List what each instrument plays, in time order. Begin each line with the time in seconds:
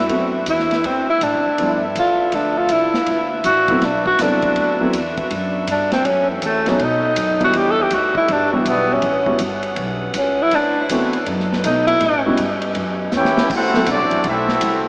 Already playing: saxophone section D4 F#4 B4 E5
0.09 upright bass F#2, grand piano A3 B3 C4 E4 F#4, kick, ride
0.46 upright bass E2, tenor saxophone E4, kick, hi-hat pedal, ride
0.59 snare
0.71 snare, ride
0.84 upright bass D2, tenor saxophone C4, kick, ride
1.10 tenor saxophone E4
1.21 upright bass A2, tenor saxophone D4, kick, hi-hat pedal, ride
1.34 upright bass F#2
1.46 upright bass D2
1.58 upright bass G2, saxophone section F3 B3 A4, grand piano F3 A3 B3 D4 E4, kick, ride
1.95 upright bass E2, tenor saxophone F4, kick, hi-hat pedal, ride
2.18 muted upright bass stroke
2.32 upright bass D2, tenor saxophone D4, kick, ride
2.58 tenor saxophone F4
2.69 upright bass C2, tenor saxophone E4, kick, hi-hat pedal, ride
2.94 muted upright bass stroke, snare
3.06 upright bass D2, saxophone section D4 F#4 B4, kick, ride
3.44 upright bass A1, tenor saxophone F#4, kick, hi-hat pedal, ride
3.68 grand piano F#3 A3 B3 C4 E4, kick, ride
3.81 upright bass B1, tenor saxophone D4, kick, snare, ride
4.06 tenor saxophone F#4, kick
4.19 upright bass C2, grand piano F#3 A3 B3 C4 E4, tenor saxophone D4, kick, snare, hi-hat pedal, ride
4.42 kick, ride
4.56 upright bass D2, kick, ride
4.80 grand piano F#3 A3 B3 C4 E4
4.93 upright bass E2, kick, hi-hat pedal, ride
5.17 kick, ride
5.30 upright bass F#2, kick, ride
5.67 upright bass G2, tenor saxophone D4, kick, hi-hat pedal, ride
5.92 tenor saxophone C4, snare, ride
6.05 upright bass F#2, tenor saxophone C#4, saxophone section C#4 A4 E5, kick, ride
6.30 tenor saxophone E3
6.42 upright bass E2, tenor saxophone A3, kick, hi-hat pedal, ride
6.66 grand piano F#3 A3 B3 D#4 F#4, tenor saxophone C#4, snare, ride
6.79 upright bass B2, saxophone section B3 A4 D#5, kick, ride
6.84 tenor saxophone D#4
7.16 upright bass F#2, kick, hi-hat pedal, ride
7.40 grand piano E3 G3 B3 D4 E4, tenor saxophone F#4, kick, ride
7.53 upright bass E2, saxophone section G3 D4 B4 E5, kick, ride
7.58 tenor saxophone G4
7.71 tenor saxophone A4
7.82 tenor saxophone G4
7.90 upright bass D2, kick, hi-hat pedal, ride
7.95 tenor saxophone F#4
8.15 tenor saxophone E4, kick
8.28 upright bass G1, tenor saxophone D4, kick, ride
8.53 grand piano E3 G3 B3 D4 F#4, tenor saxophone F#3
8.65 upright bass B1, tenor saxophone B3, kick, hi-hat pedal, ride
8.94 tenor saxophone C#4
9.02 upright bass A1, saxophone section C#4 B4 F#5, kick, ride
9.26 grand piano E3 G3 B3 C#4 F#4, kick
9.39 upright bass G1, kick, hi-hat pedal, ride
9.63 ride
9.76 upright bass B1, kick, ride
10.14 upright bass C#2, kick, hi-hat pedal, ride
10.18 tenor saxophone C#4
10.42 tenor saxophone E4
10.51 upright bass D2, tenor saxophone D4, saxophone section E4 C5, kick, ride
10.89 upright bass E2, grand piano E3 A3 B3 C4 F#4, kick, hi-hat pedal, ride
11.13 ride
11.25 upright bass F#2, saxophone section D#4 A4 D#5, kick, ride
11.40 snare
11.53 snare
11.64 upright bass B2, grand piano F#3 A3 B3 D#4 A4, tenor saxophone D#4, kick, hi-hat pedal, ride
11.87 tenor saxophone E4, ride
12.00 upright bass A2, saxophone section C#4 G4, kick, ride
12.26 grand piano G3 B3 C#4 E4 F#4
12.37 upright bass G2, kick, hi-hat pedal, ride
12.62 ride
12.75 upright bass F#2, kick, ride
13.12 upright bass E2, snare, hi-hat pedal
13.16 trombone section C#4 E4 G4, trumpet section E4 B4 C#5 G5
13.25 snare
13.37 snare
13.49 upright bass D2, saxophone section E3 A3 C4 E4, trombone section A3, kick, crash
13.54 trombone section C4 F#4, trumpet section E4 A4 C5 F#5
13.74 grand piano F#3 B3 C4 E4 A4, snare
13.86 upright bass C2, trombone section F#3 A3 D4, trumpet section F#4, kick, hi-hat pedal, ride
13.91 trumpet section C4 A4 D5
14.00 upright bass A1
14.11 upright bass F#1, ride
14.24 upright bass B1, kick, ride
14.28 trombone section A3 C4 E4, trumpet section C4 F#4 A4 E5
14.48 snare
14.61 upright bass C2, kick, hi-hat pedal, ride